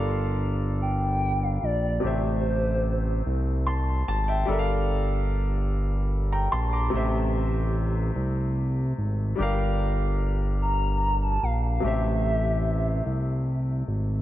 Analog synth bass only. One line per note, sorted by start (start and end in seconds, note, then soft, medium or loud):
0.00 1.58 G1 loud
1.63 1.99 A#1 medium
2.04 3.22 A1 loud
3.26 4.03 C2 medium
4.08 4.44 G#1 medium
4.48 6.48 G1 loud
6.53 6.89 A#1 medium
6.93 8.11 A1 loud
8.16 8.93 C2 medium
8.98 9.34 G#1 medium
9.39 11.38 G1 loud
11.43 11.79 A#1 medium
11.84 13.01 A1 loud
13.06 13.83 C2 medium
13.88 14.22 G#1 medium